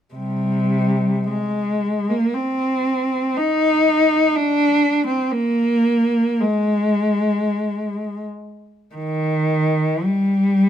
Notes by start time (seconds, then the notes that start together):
0.14 C3 G3
1.29 G#3
2.10 A#3
2.34 C4
3.37 D#4
4.36 D4
5.07 C4
5.31 A#3
6.40 G#3
8.95 D#3
10.04 G3